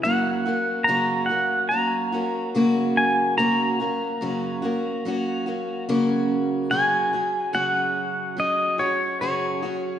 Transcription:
<<
  \new Staff \with { instrumentName = "Pedal steel guitar" } { \time 4/4 \key fis \mixolydian \tempo 4 = 72 fis''4 ais''8 fis''8 ais''4 r8 gis''8 | ais''2. r4 | gis''4 fis''4 dis''8 cis''8 cis''4 | }
  \new Staff \with { instrumentName = "Steel-string acoustic guitar" } { \time 4/4 \key fis \mixolydian <fis, cis fis ais cis' fis'>8 <fis ais cis' fis'>8 <fis, cis fis ais cis' fis'>8 <fis ais cis' fis'>8 <fis ais cis' fis'>8 <fis ais cis' fis'>8 <fis, cis fis ais cis' fis'>4 | <fis, cis fis ais cis' fis'>8 <fis ais cis' fis'>8 <fis, cis fis ais cis' fis'>8 <fis ais cis' fis'>8 <fis ais cis' fis'>8 <fis ais cis' fis'>8 <fis, cis fis ais cis' fis'>4 | <fis, cis fis cis' fis' gis'>8 <fis cis' fis' gis'>8 <fis, cis fis cis' fis' gis'>4 <fis cis' fis' gis'>8 <fis cis' fis' gis'>8 <fis, cis fis cis' fis' gis'>8 <fis cis' fis' gis'>8 | }
>>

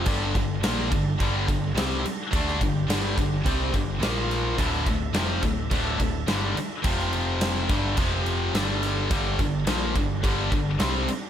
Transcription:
<<
  \new Staff \with { instrumentName = "Tonewheel organ" } { \time 4/4 \key g \dorian \tempo 4 = 106 << { a'1 | g'2. c''4 | e''1 | g''4. e''8 g'4 a'4~ |
a'1 | } \\ { d'1~ | d'2. f'4 | a'1 | c''4. a'8 c'4 d'4 |
d'1 | } >> }
  \new Staff \with { instrumentName = "Tonewheel organ" } { \time 4/4 \key g \dorian g1~ | g2. bes4 | d'1 | f'4. d'8 f4 g4~ |
g1 | }
  \new Staff \with { instrumentName = "Distorted electric guitar" } { \clef bass \time 4/4 \key g \dorian <g, d g>8 <g, d>8 <bes, f bes>8 <g, d>8 <g, d g>8 <g, d>8 <c g c'>8 r8 | <d a d'>8 <g, d>8 <g, d g>8 <g, d>8 <c g c'>8 <g, d>8 <bes, f bes>4 | <d, a, d>8 <d, a,>8 <f, c f>8 <d, a,>8 <d, a, d>8 <d, a,>8 <g, d g>8 r8 | <f, c f>4. <g, d g>8 <f, c f>4 <g, d g>4 |
<g, d g>8 <g, d>8 <bes, f bes>8 <g, d>8 <g, d g>8 <g, d>8 <c g c'>8 r8 | }
  \new Staff \with { instrumentName = "Distorted electric guitar" } { \clef bass \time 4/4 \key g \dorian <g, d g>8 <g, d>8 <bes, f bes>8 <g, d>8 <g, d g>8 <g, d>8 <c g c'>8 r8 | <d a d'>8 <g, d>8 <g, d g>8 <g, d>8 <c g c'>8 <g, d>8 <bes, f bes>4 | <d, a, d>8 <d, a,>8 <f, c f>8 <d, a,>8 <d, a, d>8 <d, a,>8 <g, d g>8 r8 | <f, c f>4. <g, d g>8 <f, c f>4 <g, d g>4 |
<g, d g>8 <g, d>8 <bes, f bes>8 <g, d>8 <g, d g>8 <g, d>8 <c g c'>8 r8 | }
  \new Staff \with { instrumentName = "Distorted electric guitar" } { \clef bass \time 4/4 \key g \dorian <g, d g>8 <g, d>8 <bes, f bes>8 <g, d>8 <g, d g>8 <g, d>8 <c g c'>8 r8 | <d a d'>8 <g, d>8 <g, d g>8 <g, d>8 <c g c'>8 <g, d>8 <bes, f bes>4 | <d, a, d>8 <d, a,>8 <f, c f>8 <d, a,>8 <d, a, d>8 <d, a,>8 <g, d g>8 r8 | <f, c f>4. <g, d g>8 <f, c f>4 <g, d g>4 |
<g, d g>8 <g, d>8 <bes, f bes>8 <g, d>8 <g, d g>8 <g, d>8 <c g c'>8 r8 | }
  \new Staff \with { instrumentName = "Picked electric bass" } { \clef bass \time 4/4 \key g \dorian g,,8 g,,8 bes,,8 g,,8 g,,8 g,,8 c,8 r8 | d,8 g,,8 g,,8 g,,8 c,8 g,,8 bes,,4 | d,,8 d,,8 f,,8 d,,8 d,,8 d,,8 g,,8 r8 | f,,4. g,,8 f,,4 g,,4 |
g,,8 g,,8 bes,,8 g,,8 g,,8 g,,8 c,8 r8 | }
  \new DrumStaff \with { instrumentName = "Drums" } \drummode { \time 4/4 <cymc bd>8 <cymc bd>8 <cymc sn>8 <cymc bd>8 <cymc bd>8 <cymc bd>8 <cymc sn>8 <cymc sn>8 | <cymc bd>16 sn16 <cymc bd>8 <cymc sn>8 <cymc bd>8 <cymc bd>8 <cymc bd>8 <cymc sn>8 <cymc sn>8 | <cymc bd>16 sn16 <cymc bd>8 <cymc sn>8 <cymc bd>8 <cymc bd>8 <cymc bd>8 <cymc sn>8 <cymc sn>8 | <cymc bd>16 sn16 cymc8 <cymc sn>8 <cymc bd>8 <cymc bd>8 cymc8 <cymc sn>8 <cymc sn>8 |
<cymc bd>8 <cymc bd>8 <cymc sn>8 <cymc bd>8 <cymc bd>8 <cymc bd>8 <cymc sn>8 <cymc sn>8 | }
>>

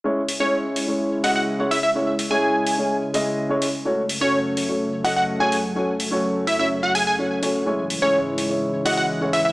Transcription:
<<
  \new Staff \with { instrumentName = "Digital synth lead" } { \time 4/4 \key cis \minor \tempo 4 = 126 r8. cis''16 r4. fis''16 fis''16 r8 e''16 e''16 | r8. gis''4. r4. r16 | r8. cis''16 r4. fis''16 fis''16 r16 gis''16 r8 | r4. e''16 e''16 r16 fis''16 gis''16 gis''16 r4 |
r8. cis''16 r4. fis''16 fis''16 r8 e''16 e''16 | }
  \new Staff \with { instrumentName = "Grand piano" } { \time 4/4 \key cis \minor <gis cis' e' cis''>16 r8 <gis cis' e' cis''>4 <gis cis' e' cis''>8. <gis cis' e' dis''>8. <gis cis' e' cis''>16 r8 | <gis cis' e' cis''>16 r8 <gis cis' e' cis''>4 <gis cis' e' cis''>8. <gis cis' e' dis''>8. <gis cis' e' cis''>16 r8 | <a cis' fis' cis''>16 r8 <a cis' fis' cis''>4 <a cis' fis' cis''>8. <a cis' fis' dis''>8. <a cis' fis' cis''>16 r8 | <a cis' fis' cis''>16 r8 <a cis' fis' cis''>4 <a cis' fis' cis''>8. r8 <a cis' fis' cis''>8 <a cis' fis' cis''>8 |
<gis cis' e' cis''>16 r8 <gis cis' e' cis''>4 <gis cis' e' cis''>8. <gis cis' e' dis''>8. <gis cis' e' cis''>16 r8 | }
  \new Staff \with { instrumentName = "Analog synth pad" } { \clef bass \time 4/4 \key cis \minor <cis gis e'>1~ | <cis gis e'>1 | <fis, a>1~ | <fis, a>1 |
<cis, gis, e>1 | }
  \new DrumStaff \with { instrumentName = "Drums" } \drummode { \time 4/4 r8 hho8 r8 hho8 r8 hho8 r8 hho8 | r8 hho8 r8 hho8 r8 hho8 r8 hho8 | r8 hho8 r8 hho8 r8 hho8 r8 hho8 | r8 hho8 r8 hho8 r8 hho8 r8 hho8 |
r8 hho8 r8 hho8 r8 hho8 r8 hho8 | }
>>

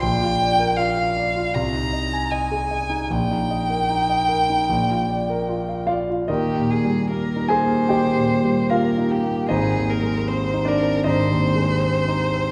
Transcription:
<<
  \new Staff \with { instrumentName = "Violin" } { \time 4/4 \key ees \major \tempo 4 = 76 g''4 f''4 bes''4 aes''4 | g''2.~ g''8 r8 | g'8 aes'8 bes'8 c''4. bes'8 g'8 | aes'8 bes'8 c''8 bes'8 c''2 | }
  \new Staff \with { instrumentName = "Grand piano" } { \time 4/4 \key ees \major << { r1 | r2. r8 <f' f''>8 | <ees' bes' ees''>4. <aes' aes''>8 <g' ees'' g''>4 <f' f''>4 | <ees' c'' ees''>4. <d' d''>8 <ees' c'' ees''>4 r4 | } \\ { bes,,16 f'16 d''16 bes'16 f'16 f''16 d''16 f'16 c,16 ees'16 ees''16 aes''16 ees''16 aes'16 ees''16 ees'16 | bes,,16 ees'16 ees''16 bes'16 ees'16 ees''16 bes'16 ees'16 bes,,16 f'16 d''16 bes'16 f'16 f''16 d''16 f'16 | \tuplet 3/2 { ees,8 bes,8 g8 bes8 ees'8 bes8 ees,8 bes,8 g8 bes8 ees'8 bes8 } | \tuplet 3/2 { aes,,8 ees,8 aes8 c'8 ees'8 c'8 aes,,8 ees,8 aes8 c'8 ees'8 c'8 } | } >> }
>>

